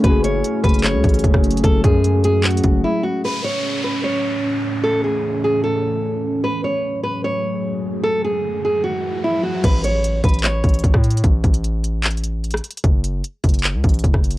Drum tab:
CC |------------------------------------------------------------------------------------------------|------------------------------------------------------------------------------------------------|------------------------------------------------------------------------------------------------|------------------------------------------------------------------------------------------------|
HH |x-----------x-----------x-----------x--x--x--x--x-----------x--x--x--x--x-----------x---x---x---|x-----------x-----------x-----------x-----------x---x---x---x-----------------------------------|------------------------------------------------------------------------------------------------|------------------------------------------------------------------------------------------------|
CP |------------------------------------------------x-----------------------------------------------|------------------------------------------------x-----------------------------------------------|------------------------------------------------------------------------------------------------|------------------------------------------------------------------------------------------------|
SD |------------------------------------------------------------------------------r-----------------|------------------------------------------------------------------------------------------------|------------------------------------------------------------------------------------------------|------------------------------------------------------------------------------------------------|
BD |o-----------------------------------o-----------------------o-----------o-----o-----------------|o-----------o-----------------------------------------------o-----------------------------------|------------------------------------------------------------------------------------------------|------------------------------------------------------------------------------------------------|

CC |------------------------------------------------------------------------------------------------|------------------------------------------------------------------------------------------------|x-----------------------------------------------------------------------------------------------|------------------------------------------------------------------------------------------------|
HH |------------------------------------------------------------------------------------------------|------------------------------------------------------------------------------------------------|x-----------x-----------x-----------x--x--x--x--x-----------x--x--x--x--x-----------x---x---x---|x-----------x-----x-----x-----------x-----------x---x---x---x-----------x---x---x---x---x---x---|
CP |------------------------------------------------------------------------------------------------|------------------------------------------------------------------------------------------------|------------------------------------------------x-----------------------------------------------|------------------------------------------------x-----------------------------------------------|
SD |------------------------------------------------------------------------------------------------|------------------------------------------------------------------------------------------------|------------------------------------------------------------------------------r-----------------|------------------------------------------------------------------------------r-----------------|
BD |------------------------------------------------------------------------------------------------|------------------------------------------------------------------------------------------------|o-----------------------------------o-----------------------o-----------o-----o-----------------|o-----------o-----------------------------------------------------------------------------------|

CC |------------------------------------------------------------------------------------------------|
HH |x-----------x-----------x-----------x--x--x--x--x-----------x--x--x--x--x-----------x---x-------|
CP |------------------------------------------------x-----------------------------------------------|
SD |------------------------------------------------------------------------------r-----------------|
BD |o-----------------------------------o-----------------------o-----------o-----o-----------------|